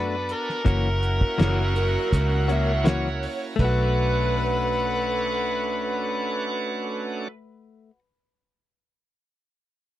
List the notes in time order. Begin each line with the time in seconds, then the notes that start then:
Already playing: F#2 A3 B3 D4 F#4 A4 B4 D5 A5
0.29 A#4, closed hi-hat
0.49 snare
0.65 F#1 E3 A#3 C#4 E4 F#4 A#4 E5 F#5, kick, closed hi-hat
1.03 closed hi-hat
1.21 kick
1.38 F#1 E3 A#3 C#4 F#4 A#4, snare, closed hi-hat
1.76 F#4 A#4, closed hi-hat
2.13 C#2 F#4 A#4, kick, closed hi-hat
2.48 A#3 C#4 F#4 C#5 E5, closed hi-hat
2.84 E3 A#3 C#4 F#4 C#5, snare, closed hi-hat
3.06 snare
3.23 open hi-hat
3.56 B1 A3 C#4 D4 F#4 F#5, kick, crash
3.60 A4 B4
3.65 F#4